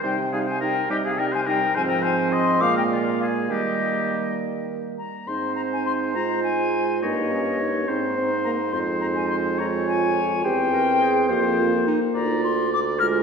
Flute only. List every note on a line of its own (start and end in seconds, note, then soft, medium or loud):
0.05 0.34 G5 medium
0.33 0.47 F5 medium
0.49 0.62 G#5 medium
0.63 0.92 G5 medium
0.91 1.05 D#5 medium
1.06 1.12 F5 medium
1.20 1.26 G5 medium
1.35 1.41 G#5 medium
1.48 1.76 G5 medium
1.76 1.82 G#5 loud
1.89 2.03 G5 medium
2.03 2.31 G#5 medium
2.32 2.62 C6 medium
2.61 2.75 D6 loud
2.77 2.83 G5 medium
2.90 2.97 D5 medium
3.20 3.27 F5 medium
3.50 4.37 D#5 medium
4.98 5.29 A#5 medium
5.27 5.55 C6 medium
5.55 5.61 A#5 medium
5.73 5.85 G#5 medium
5.86 5.92 C6 loud
6.14 6.43 A#5 medium
6.44 7.01 G#5 loud
7.01 8.14 D#5 medium
8.44 8.51 A#5 medium
8.72 8.79 C6 medium
9.01 9.07 A#5 medium
9.16 9.29 G#5 medium
9.29 9.36 C6 medium
9.59 9.66 A#5 medium
9.87 10.46 G#5 medium
10.45 11.58 G5 loud
12.15 12.42 A#5 medium
12.44 12.71 C6 medium
12.73 12.79 D6 loud
13.00 13.06 F6 loud